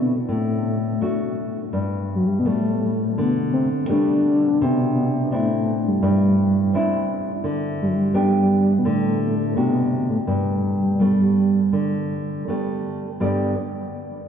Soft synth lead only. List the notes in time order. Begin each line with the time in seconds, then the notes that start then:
Already playing: B3
0.31 A3
2.15 F#3 G3
2.27 G3
2.39 B3
2.48 A3
3.20 B3
3.54 C4
3.91 D4
4.64 B3
5.27 B3
5.34 A3
5.88 G3
7.82 G3
7.87 F#3
7.95 G3
8.79 B3
8.87 A3
9.57 B3
10.10 A3
10.28 G3